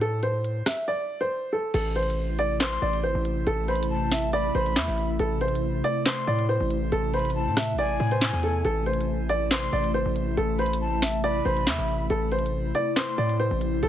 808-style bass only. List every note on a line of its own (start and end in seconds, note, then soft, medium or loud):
0.00 0.62 A2 loud
1.74 2.78 A1 loud
2.82 3.05 A1 loud
3.04 3.14 G#1 loud
3.15 3.45 A1 loud
3.47 4.51 A1 loud
4.55 4.78 A1 loud
4.76 4.87 E2 loud
4.88 5.18 A1 loud
5.19 5.82 A1 loud
6.27 6.59 A2 loud
6.60 6.91 A1 loud
6.92 7.48 A1 loud
7.47 7.75 A2 loud
7.73 7.99 A1 loud
8.00 8.32 A2 loud
8.33 8.63 E2 loud
8.65 9.69 A1 loud
9.73 9.96 A1 loud
9.94 10.05 G#1 loud
10.06 10.36 A1 loud
10.37 11.41 A1 loud
11.45 11.68 A1 loud
11.67 11.78 E2 loud
11.78 12.09 A1 loud
12.10 12.72 A1 loud
13.18 13.50 A2 loud
13.51 13.81 A1 loud
13.83 13.89 A1 loud